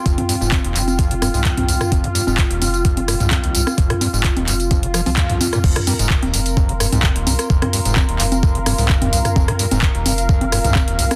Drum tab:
CC |----------------|----------------|----------------|x---------------|
HH |xxo-xxoxxxooxxox|xxo-xxoxxxoxxxox|xxo-xxoxxxooxxox|-xox-xox-xox-xox|
TB |x-xxx-xxx-xxx-xx|x-xxx-xxx-xxx-xx|x-xx--xxx-xxx-xx|x-xx--xxx-xxx-xx|
CP |----x-x-----x---|----x-------x---|----x-x-----x---|----x-------x---|
SD |----------r----r|----------r----r|-r--------r----r|-r--------r----r|
T2 |-o-----------o-o|-o---------o----|-o-----------o-o|-o---------o----|
CG |-o--o--o--o--o--|o--o--o--o--o--o|--o--o--o--o--o-|--o--o--o--o--o-|
BD |o---o---o---o---|o---o---o---o---|o---o---o---o---|o---o---o---o---|

CC |----------------|----------------|
HH |-xox-xox-xoo-xox|-xox-xox-xox-xox|
TB |x-xxx-xxx-xxx-xx|x-xxx-xxx-xxx-xx|
CP |----x-x-----x---|----x-------x---|
SD |-r--------r----r|-r--------r----r|
T2 |-o-----------o-o|-o---------o----|
CG |-o--o--o--o--o--|o--o--o--o--o--o|
BD |o---o---o---o---|o---o---o---o---|